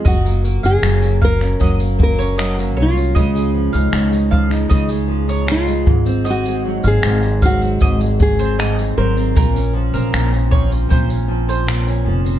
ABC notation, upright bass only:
X:1
M:4/4
L:1/16
Q:1/4=77
K:Gblyd
V:1 name="Upright bass" clef=bass
G,,,3 G,,, G,,,4 G,,,6 C,,2 | D,,3 D,, D,,4 D,,6 A,,,2- | A,,,3 A,,, A,,,4 A,,,6 A,,,2 | B,,,3 B,,, B,,,4 B,,,6 F,,,2 |]